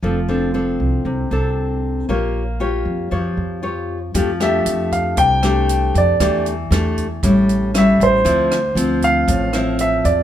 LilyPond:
<<
  \new Staff \with { instrumentName = "Grand piano" } { \time 4/4 \key f \major \tempo 4 = 117 r1 | r1 | r8 e''4 f''8 g''4. d''8~ | d''8 r2 r8 e''8 c''8~ |
c''4. f''4. e''8 d''8 | }
  \new Staff \with { instrumentName = "Nylon-string guitar" } { \time 4/4 \key f \major << { <c' d' a'>8 <c' d' a'>8 <c' d' a'>4. <c' d' a'>4. | <f' g' des''>8 r8 <f' g' des''>4 <f' g' des''>4 <f' g' des''>8 r8 | <a d' g'>8 <a d' g'>2 <a d' g'>4. | <a d' g'>8 r8 <a d' g'>8 r8 <g cis' e'>4 <g cis' e'>4 |
<f c' e'>8 r8 <f c'>4. <f c' e'>4. | } \\ { f2 c2 | bes2 f2 | f2 c2 | e2 a,2 |
d2 a,2 | } >> }
  \new Staff \with { instrumentName = "Upright bass" } { \clef bass \time 4/4 \key f \major f,,4. c,8 c,8 c,4. | bes,,4. f,8 f,8 f,4. | f,4 f,4 c,4. f,8 | e,4 e,4 a,,4. a,,8 |
d,4 d,4 a,,4. e,8 | }
  \new DrumStaff \with { instrumentName = "Drums" } \drummode { \time 4/4 r4 r4 r4 r4 | r4 r4 r4 r4 | <hh bd>8 <hh ss>8 hh8 <hh bd>8 <hh bd>8 <hh ss>8 hh8 <hh bd>8 | <hh bd ss>8 hh8 <hh ss>8 <hh bd>8 <hh bd>8 hh8 <hh ss>8 <hh bd>8 |
<hh bd>8 <hh ss>8 hh8 <hh bd>8 <hh bd>8 <hh ss>8 hh8 <hh bd>8 | }
>>